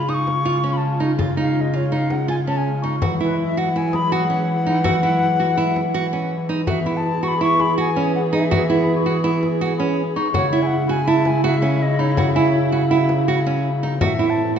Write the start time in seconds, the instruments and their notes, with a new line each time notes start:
Already playing: string section C#3 G#3 F4, bass clarinet C#3, flute B5
0.09 nylon-string guitar D#4, flute D#6
0.14 flute C#6
0.27 frame drum
0.45 nylon-string guitar F4
0.64 nylon-string guitar C#4
0.73 flute B5
0.78 flute A5
1.00 nylon-string guitar D#4
1.19 nylon-string guitar F4, frame drum
1.37 nylon-string guitar D#4, flute F5, frame drum
1.57 flute D#5 F5
1.74 nylon-string guitar F4, flute C#5
1.92 nylon-string guitar D#4, flute F5
2.10 flute F#5, frame drum
2.28 nylon-string guitar F4, flute G#5
2.47 nylon-string guitar C#4, flute A5
2.57 flute G#5
2.82 nylon-string guitar D#4, celesta C#6, frame drum
3.02 bass clarinet E3, string section F#3 E4, nylon-string guitar F#4, frame drum
3.20 nylon-string guitar E4, flute B4, frame drum
3.40 flute E5
3.57 nylon-string guitar F#4, flute F#5
3.76 nylon-string guitar E4, flute G#5
3.93 flute B5, celesta D#6, frame drum
4.12 nylon-string guitar F#4, flute F#5
4.30 nylon-string guitar C#4
4.66 nylon-string guitar D#4, frame drum
4.84 nylon-string guitar F#4, celesta E6, frame drum
5.03 nylon-string guitar E4
5.21 frame drum
5.40 nylon-string guitar F#4
5.57 nylon-string guitar E4
5.76 frame drum
5.94 nylon-string guitar F#4, frame drum
6.13 nylon-string guitar C#4
6.49 nylon-string guitar D#4
6.67 string section E3 B3 G#4, bass clarinet E3, nylon-string guitar F#4, flute E5, frame drum
6.86 nylon-string guitar E4, celesta B5
6.97 flute A5
7.23 nylon-string guitar F#4, flute C#6
7.28 flute B5
7.41 nylon-string guitar E4, flute C#6
7.60 celesta G#5, flute B5, frame drum
7.78 nylon-string guitar F#4, flute G#5
7.96 nylon-string guitar C#4
8.16 flute F#5
8.33 nylon-string guitar D#4, flute E5
8.51 nylon-string guitar F#4, frame drum
8.70 nylon-string guitar E4, celesta F#5
8.84 celesta B5
8.96 celesta C#6
9.06 nylon-string guitar F#4
9.24 nylon-string guitar E4
9.43 frame drum
9.61 nylon-string guitar F#4
9.79 nylon-string guitar C#4, celesta B5
10.16 nylon-string guitar D#4, celesta C#6
10.33 string section C#3 G#3 E4, bass clarinet C#3, nylon-string guitar F#4, flute C#5, frame drum
10.53 nylon-string guitar E4
10.62 flute G#5
10.66 flute F#5
10.89 nylon-string guitar F#4, flute G#5
11.07 nylon-string guitar E4, flute A5
11.25 flute G#5, frame drum
11.44 nylon-string guitar F#4, flute E5
11.62 nylon-string guitar C#4
11.82 flute D#5
11.99 nylon-string guitar D#4, flute C#5, celesta B5
12.17 string section F#3, nylon-string guitar F#4, frame drum
12.35 nylon-string guitar E4, celesta G#5
12.72 nylon-string guitar F#4
12.90 nylon-string guitar E4, celesta F#5, frame drum
13.09 frame drum
13.28 nylon-string guitar F#4
13.46 nylon-string guitar C#4, frame drum
13.83 nylon-string guitar D#4
14.00 bass clarinet A2, string section E3 A3 C4, nylon-string guitar F#4, flute E5, frame drum
14.19 nylon-string guitar E4
14.30 flute A5